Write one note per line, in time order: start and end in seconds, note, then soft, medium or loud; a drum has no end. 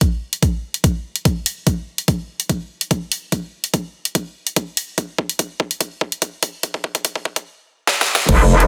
0.01 kick loud
0.01 closed hi-hat medium
0.33 closed hi-hat soft
0.43 kick medium
0.43 closed hi-hat medium
0.74 closed hi-hat medium
0.84 kick medium
0.84 closed hi-hat medium
1.16 closed hi-hat medium
1.25 kick loud
1.25 closed hi-hat medium
1.46 open hi-hat medium
1.67 kick loud
1.67 closed hi-hat medium
1.98 closed hi-hat soft
2.08 kick loud
2.08 closed hi-hat medium
2.40 closed hi-hat soft
2.49 kick loud
2.49 closed hi-hat medium
2.81 closed hi-hat medium
2.91 kick loud
2.91 closed hi-hat medium
3.12 open hi-hat medium
3.32 kick loud
3.32 closed hi-hat medium
3.64 closed hi-hat soft
3.74 kick loud
3.74 closed hi-hat medium
4.05 closed hi-hat medium
4.15 kick loud
4.15 closed hi-hat medium
4.47 closed hi-hat medium
4.56 kick loud
4.56 closed hi-hat medium
4.77 open hi-hat medium
4.98 kick loud
4.98 closed hi-hat medium
5.18 kick loud
5.29 closed hi-hat medium
5.39 kick loud
5.39 closed hi-hat medium
5.60 kick loud
5.71 closed hi-hat soft
5.81 kick loud
5.81 closed hi-hat medium
6.01 kick loud
6.12 closed hi-hat soft
6.22 kick loud
6.22 closed hi-hat medium
6.43 kick loud
6.43 open hi-hat loud
6.63 kick loud
6.63 closed hi-hat medium
6.74 kick loud
6.84 kick loud
6.95 kick medium
6.95 closed hi-hat medium
7.05 kick loud
7.05 closed hi-hat medium
7.16 kick loud
7.25 kick loud
7.36 kick medium
7.36 closed hi-hat medium
7.87 snare medium
8.01 snare medium
8.15 snare loud
8.29 8.67 F1 loud
8.29 kick loud
8.29 closed hi-hat medium
8.29 crash loud
8.60 closed hi-hat medium